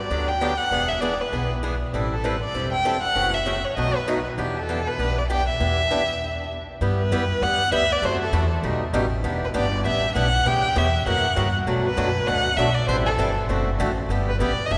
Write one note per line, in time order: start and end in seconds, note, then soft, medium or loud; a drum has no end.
0.00 0.30 D5 medium
0.10 0.59 D2 medium
0.10 0.30 D3 medium
0.10 0.30 F#3 medium
0.10 0.31 B3 medium
0.10 0.31 D4 medium
0.10 0.31 G4 medium
0.28 0.59 G5 medium
0.41 0.52 D3 medium
0.41 0.52 F#3 medium
0.41 0.52 B3 medium
0.41 0.52 D4 medium
0.41 0.53 G4 medium
0.58 0.90 F#5 medium
0.71 1.20 E1 medium
0.71 0.91 E3 medium
0.71 0.91 B3 medium
0.71 0.92 D4 medium
0.71 0.92 G#4 medium
0.88 1.02 E5 medium
1.01 1.13 E3 medium
1.01 1.13 B3 medium
1.01 1.13 D4 medium
1.01 1.13 G#4 medium
1.01 1.22 D5 medium
1.21 1.51 B4 medium
1.32 1.81 B1 medium
1.32 1.52 E3 medium
1.32 1.52 B3 medium
1.32 1.53 D4 medium
1.32 1.53 G#4 medium
1.63 1.74 E3 medium
1.63 1.74 B3 medium
1.63 1.74 D4 medium
1.63 1.74 G#4 medium
1.93 2.42 A1 medium
1.93 2.14 E3 medium
1.93 2.14 G3 medium
1.93 2.14 C4 medium
1.93 2.14 E4 medium
1.93 2.14 A4 medium
2.13 2.27 A4 medium
2.24 2.35 E3 medium
2.24 2.35 G3 medium
2.24 2.35 C4 medium
2.24 2.35 E4 medium
2.24 2.35 A4 medium
2.24 2.43 B4 medium
2.43 2.71 D5 medium
2.54 3.03 E1 medium
2.54 2.74 E3 medium
2.54 2.75 G3 medium
2.54 2.75 C4 medium
2.54 2.75 E4 medium
2.54 2.75 A4 medium
2.72 3.01 G5 medium
2.85 2.96 E3 medium
2.85 2.96 G3 medium
2.85 2.96 C4 medium
2.85 2.96 E4 medium
2.85 2.96 A4 medium
3.03 3.35 F#5 loud
3.15 3.64 F#1 medium
3.15 3.35 C#3 medium
3.15 3.36 E3 medium
3.15 3.36 A3 medium
3.15 3.36 C#4 medium
3.15 3.36 F#4 medium
3.34 3.66 E5 medium
3.46 3.57 C#3 medium
3.46 3.57 E3 medium
3.46 3.57 A3 medium
3.46 3.57 C#4 medium
3.46 3.58 F#4 medium
3.65 3.77 C#5 medium
3.76 4.25 B1 medium
3.76 3.97 B2 medium
3.76 3.97 F#3 medium
3.76 3.97 A3 medium
3.76 3.97 D#4 medium
3.76 3.97 F#4 medium
3.76 3.98 D#5 medium
3.96 4.26 B4 medium
4.08 4.18 B2 medium
4.08 4.18 F#3 medium
4.08 4.18 A3 medium
4.08 4.19 D#4 loud
4.08 4.18 F#4 medium
4.38 4.86 E2 medium
4.38 4.57 E3 medium
4.38 4.58 B3 medium
4.38 4.58 D4 medium
4.38 4.58 G4 medium
4.57 4.89 A4 medium
4.69 4.79 E3 medium
4.69 4.79 B3 medium
4.69 4.79 D4 medium
4.69 4.80 G4 medium
4.88 5.20 B4 medium
4.99 5.47 B1 medium
4.99 5.19 E3 medium
4.99 5.19 B3 medium
4.99 5.19 D4 medium
4.99 5.19 G4 medium
5.18 5.30 D5 medium
5.30 5.40 E3 medium
5.30 5.40 B3 medium
5.30 5.40 D4 medium
5.30 5.41 G4 medium
5.30 5.47 G5 medium
5.48 6.47 E5 medium
5.60 6.08 E2 medium
5.60 5.80 E3 medium
5.60 5.80 B3 medium
5.60 5.80 D4 medium
5.60 5.80 G4 medium
5.91 6.01 E3 medium
5.91 6.01 B3 medium
5.91 6.01 D4 medium
5.91 6.02 G4 medium
6.81 7.10 G2 medium
6.81 7.01 G3 medium
6.81 7.01 B3 medium
6.81 7.01 E4 medium
6.81 7.01 G4 medium
7.00 7.44 B4 medium
7.11 7.41 F#2 medium
7.11 7.22 G3 medium
7.11 7.23 B3 loud
7.11 7.23 E4 medium
7.11 7.23 G4 medium
7.41 7.71 E2 medium
7.41 7.62 G3 medium
7.41 7.62 B3 medium
7.41 7.62 E4 medium
7.41 7.62 G4 medium
7.41 7.73 F#5 loud
7.72 8.01 D2 medium
7.72 7.83 G3 medium
7.72 7.83 B3 medium
7.72 7.83 E4 medium
7.72 7.83 G4 medium
7.72 7.93 E5 loud
7.92 8.06 D5 medium
8.02 8.32 F#2 medium
8.02 8.22 C3 medium
8.02 8.23 E3 medium
8.02 8.22 A3 medium
8.02 8.23 E4 medium
8.02 8.23 F#4 medium
8.02 8.21 C5 medium
8.22 8.50 A4 medium
8.32 8.62 E2 medium
8.32 8.44 C3 medium
8.32 8.44 E3 medium
8.32 8.44 A3 medium
8.32 8.44 E4 medium
8.32 8.44 F#4 medium
8.63 8.92 B1 medium
8.63 8.83 B2 medium
8.63 8.83 G3 medium
8.63 8.83 A3 medium
8.63 8.83 D#4 medium
8.63 8.83 G4 medium
8.93 9.23 A1 medium
8.93 9.04 B2 medium
8.93 9.05 G3 loud
8.93 9.05 A3 medium
8.93 9.05 D#4 medium
8.93 9.05 G4 loud
9.24 9.53 E1 medium
9.24 9.44 E3 medium
9.24 9.44 B3 medium
9.24 9.44 D4 medium
9.24 9.44 G4 medium
9.44 9.49 B4 medium
9.54 9.84 G1 medium
9.54 9.65 E3 medium
9.54 9.65 B3 medium
9.54 9.65 D4 medium
9.54 9.65 G4 loud
9.54 9.83 D5 medium
9.85 10.14 A1 medium
9.85 10.04 E3 medium
9.85 10.05 B3 medium
9.85 10.05 D4 medium
9.85 10.05 G4 medium
9.85 10.14 E5 medium
10.15 10.45 B1 loud
10.15 10.26 E3 medium
10.15 10.26 B3 loud
10.15 10.26 D4 loud
10.15 10.27 G4 medium
10.15 10.49 F#5 loud
10.46 10.75 C#2 medium
10.46 10.65 C#3 medium
10.46 10.65 E3 medium
10.46 10.66 B3 medium
10.46 10.66 C#4 medium
10.46 10.66 G4 medium
10.46 10.79 G5 loud
10.75 11.05 E2 medium
10.75 10.86 C#3 medium
10.75 10.87 E3 medium
10.75 10.87 B3 loud
10.75 10.87 C#4 medium
10.75 10.87 G4 medium
10.75 11.07 E5 medium
11.06 11.36 F#2 medium
11.06 11.26 C#3 medium
11.06 11.26 E3 medium
11.06 11.26 A#3 medium
11.06 11.26 C#4 medium
11.06 11.26 F#4 medium
11.06 11.52 F#5 medium
11.36 11.66 G2 medium
11.36 11.47 C#3 medium
11.36 11.47 E3 loud
11.36 11.47 A#3 medium
11.36 11.47 C#4 medium
11.36 11.48 F#4 medium
11.67 11.86 B2 medium
11.67 11.96 B2 medium
11.67 11.87 F#3 medium
11.67 11.87 A3 medium
11.67 11.87 D4 medium
11.67 11.87 F#4 medium
11.86 12.28 B4 medium
11.97 12.27 F#2 medium
11.97 12.08 B2 medium
11.97 12.08 F#3 medium
11.97 12.08 A3 medium
11.97 12.08 D4 medium
11.97 12.08 F#4 medium
12.27 12.57 D2 medium
12.27 12.47 B2 medium
12.27 12.47 F#3 medium
12.27 12.48 A3 medium
12.27 12.48 D4 medium
12.27 12.48 F#4 medium
12.27 12.58 F#5 loud
12.57 12.87 B1 medium
12.57 12.69 B2 medium
12.57 12.69 F#3 medium
12.57 12.69 A3 medium
12.57 12.69 D4 medium
12.57 12.69 F#4 medium
12.57 12.76 E5 medium
12.75 12.87 D5 medium
12.88 13.17 A1 medium
12.88 13.08 E3 medium
12.88 13.08 G3 medium
12.88 13.08 C4 medium
12.88 13.09 E4 medium
12.88 13.09 A4 medium
12.88 12.96 C5 loud
13.06 13.34 A4 medium
13.18 13.48 G1 medium
13.18 13.29 E3 medium
13.18 13.30 G3 medium
13.18 13.30 C4 medium
13.18 13.30 E4 loud
13.18 13.30 A4 loud
13.49 13.78 F#1 medium
13.49 13.69 D3 medium
13.49 13.69 A3 medium
13.49 13.69 C4 medium
13.49 13.69 F#4 medium
13.49 13.69 A4 medium
13.79 14.08 A1 medium
13.79 13.90 D3 medium
13.79 13.90 A3 loud
13.79 13.91 C4 medium
13.79 13.91 F#4 medium
13.79 13.91 A4 loud
14.09 14.39 G1 medium
14.09 14.30 G3 medium
14.09 14.30 B3 medium
14.09 14.30 E4 medium
14.09 14.30 G4 medium
14.29 14.40 B4 medium
14.39 14.57 A1 medium
14.39 14.51 G3 medium
14.39 14.51 B3 medium
14.39 14.51 E4 medium
14.39 14.52 G4 loud
14.39 14.67 D5 medium
14.58 muted upright bass stroke soft
14.66 14.72 D#5 medium
14.70 14.78 E1 medium
14.70 14.78 E3 medium
14.70 14.78 B3 medium
14.70 14.78 D4 medium
14.70 14.78 G#4 medium
14.70 14.78 E5 loud